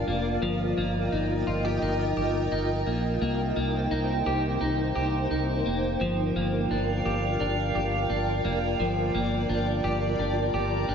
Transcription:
0.00 0.42 F3 medium
0.00 0.49 D4 medium
0.00 3.18 F4 medium
0.00 1.47 G4 medium
0.00 0.39 A#4 medium
0.00 0.39 D5 medium
0.00 0.40 F5 medium
0.07 0.38 F1 medium
0.07 0.77 A#3 medium
0.42 0.73 G1 loud
0.42 3.22 F3 medium
0.42 3.19 A#4 medium
0.42 3.19 D#5 medium
0.42 5.97 G5 medium
0.78 1.08 G1 medium
0.78 2.86 A#3 medium
1.12 1.43 G1 medium
1.12 1.82 D#4 medium
1.47 1.78 G1 medium
1.47 1.65 F4 medium
1.65 2.16 G4 medium
1.82 2.13 G1 medium
1.82 2.52 D#4 medium
2.17 2.48 G1 medium
2.17 4.26 G4 medium
2.52 2.83 G1 medium
2.52 3.91 D#4 medium
2.87 3.18 A#1 medium
2.87 3.21 A#3 medium
3.21 3.52 C2 medium
3.21 3.56 A#3 medium
3.21 5.98 D#4 medium
3.21 10.95 A#4 medium
3.21 5.98 C5 medium
3.56 3.87 C2 medium
3.56 5.65 A#3 medium
3.91 4.22 C2 medium
3.91 4.60 D#4 medium
4.26 4.57 C2 medium
4.26 4.95 G4 medium
4.61 4.92 C2 medium
4.61 5.30 D#4 medium
4.96 5.27 C2 medium
4.96 7.05 G4 medium
5.31 5.62 C2 medium
5.31 6.08 D#4 medium
5.66 5.97 F1 medium
5.66 6.36 A#3 soft
6.01 6.31 G1 loud
6.01 8.79 F3 medium
6.01 10.95 F4 medium
6.01 10.95 D5 medium
6.01 10.95 G5 medium
6.36 6.67 G1 medium
6.36 8.44 A#3 medium
6.36 9.02 F5 medium
6.71 7.01 G1 medium
6.71 7.39 D4 medium
7.06 7.36 G1 medium
7.06 7.75 G4 medium
7.40 7.71 G1 medium
7.40 8.09 D4 medium
7.75 8.06 G1 medium
7.75 9.84 G4 medium
8.10 8.41 G1 medium
8.10 9.48 D4 medium
8.45 8.76 F1 medium
8.45 9.14 A#3 medium
8.80 9.10 G1 medium
8.80 10.95 F3 medium
9.15 9.45 G1 medium
9.15 10.95 A#3 medium
9.49 9.80 G1 medium
9.49 10.18 D4 medium
9.84 10.15 G1 medium
9.84 10.54 G4 medium
10.18 10.50 G1 medium
10.18 10.88 D4 medium
10.18 10.95 A#5 medium
10.41 10.95 D6 medium
10.54 10.85 G1 medium
10.54 10.95 G4 medium
10.89 10.95 G1 medium
10.89 10.95 D4 medium

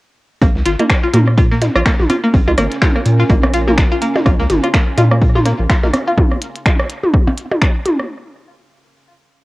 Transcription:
0.42 0.52 A#1 medium
0.42 0.46 A#3 loud
0.42 6.18 C#4 medium
0.42 kick loud
0.42 cross-stick soft
0.42 closed hi-hat medium
0.42 percussion blips medium
0.56 0.63 C#2 loud
0.56 snare soft
0.66 0.76 G#1 medium
0.66 0.70 F4 medium
0.66 snare medium
0.66 closed hi-hat medium
0.80 0.83 A#3 loud
0.80 closed hi-hat soft
0.80 high tom soft
0.80 percussion blips medium
0.90 finger snap medium
0.90 kick loud
0.90 cross-stick medium
0.90 snare loud
0.90 closed hi-hat medium
1.04 1.07 F4 loud
1.14 1.69 A#2 loud
1.14 1.18 A#3 loud
1.14 closed hi-hat medium
1.14 high tom medium
1.27 6.18 A#4 medium
1.27 cross-stick soft
1.36 1.42 F4 medium
1.36 6.18 G#5 medium
1.36 kick loud
1.36 closed hi-hat medium
1.52 1.55 A#3 loud
1.52 snare soft
1.62 snare medium
1.62 closed hi-hat medium
1.62 high tom soft
1.62 percussion blips medium
1.76 1.83 A#1 medium
1.76 1.79 F4 loud
1.76 cross-stick medium
1.86 1.90 A#3 loud
1.86 finger snap medium
1.86 kick loud
1.86 snare loud
1.86 closed hi-hat medium
1.99 2.07 A#1 medium
1.99 snare soft
1.99 high tom medium
2.10 2.14 F4 loud
2.10 cross-stick soft
2.10 closed hi-hat medium
2.10 percussion blips medium
2.24 2.27 A#3 loud
2.34 2.44 A#1 loud
2.34 kick loud
2.34 open hi-hat medium
2.34 percussion blips medium
2.48 2.55 C#2 loud
2.48 2.51 F4 loud
2.48 high tom soft
2.48 percussion blips medium
2.58 2.68 G#1 medium
2.58 2.62 A#3 loud
2.58 cross-stick medium
2.58 closed hi-hat medium
2.72 snare soft
2.72 closed hi-hat soft
2.82 2.86 F4 loud
2.82 finger snap medium
2.82 kick loud
2.82 snare loud
2.82 closed hi-hat medium
2.82 high tom medium
2.96 2.99 A#3 loud
2.96 cross-stick soft
3.06 3.24 A#2 loud
3.06 closed hi-hat medium
3.19 3.23 F4 loud
3.19 snare soft
3.30 3.85 A#1 loud
3.30 3.34 A#3 loud
3.30 kick loud
3.30 closed hi-hat medium
3.30 high tom soft
3.30 percussion blips medium
3.43 cross-stick medium
3.43 percussion blips medium
3.54 3.58 F4 loud
3.54 snare soft
3.54 closed hi-hat medium
3.67 3.71 A#3 loud
3.67 snare soft
3.67 high tom medium
3.78 finger snap medium
3.78 kick loud
3.78 cross-stick soft
3.78 snare loud
3.78 closed hi-hat medium
3.92 3.95 F4 loud
4.02 4.06 A#3 loud
4.02 closed hi-hat medium
4.15 snare medium
4.15 high tom soft
4.15 percussion blips medium
4.26 4.36 A#1 medium
4.26 4.30 F4 loud
4.26 kick loud
4.26 cross-stick medium
4.26 closed hi-hat medium
4.26 percussion blips medium
4.39 4.47 C#2 loud
4.39 4.43 A#3 loud
4.39 snare soft
4.50 4.60 G#1 medium
4.50 snare medium
4.50 closed hi-hat medium
4.50 high tom medium
4.63 4.67 F4 loud
4.63 cross-stick soft
4.63 closed hi-hat soft
4.74 4.78 A#3 loud
4.74 finger snap medium
4.74 kick loud
4.74 snare loud
4.74 closed hi-hat medium
4.98 5.53 A#2 loud
4.98 5.02 F4 loud
4.98 closed hi-hat medium
4.98 closed hi-hat loud
4.98 high tom soft
4.98 percussion blips medium
5.11 5.15 A#3 loud
5.11 cross-stick medium
5.22 kick loud
5.22 closed hi-hat medium
5.35 5.39 F4 loud
5.35 snare soft
5.35 high tom medium
5.46 5.50 A#3 loud
5.46 cross-stick soft
5.46 snare medium
5.46 closed hi-hat medium
5.59 5.67 A#1 loud
5.70 5.74 F4 loud
5.70 finger snap medium
5.70 kick loud
5.70 snare loud
5.70 closed hi-hat medium
5.83 5.91 A#1 medium
5.83 5.87 A#3 loud
5.83 snare soft
5.83 high tom soft
5.83 percussion blips medium
5.94 cross-stick medium
5.94 closed hi-hat medium
5.94 percussion blips medium
6.08 6.11 F4 loud
6.18 kick loud
6.18 high tom medium
6.18 percussion blips medium
6.32 cross-stick soft
6.42 closed hi-hat loud
6.56 closed hi-hat soft
6.66 finger snap medium
6.66 kick loud
6.66 high tom soft
6.66 percussion blips medium
6.79 cross-stick medium
6.90 closed hi-hat medium
7.03 high tom medium
7.14 kick loud
7.14 cross-stick soft
7.28 percussion blips medium
7.38 closed hi-hat medium
7.52 high tom soft
7.52 percussion blips medium
7.62 finger snap medium
7.62 kick loud
7.62 cross-stick medium
7.86 closed hi-hat medium
7.86 high tom medium
7.99 cross-stick soft

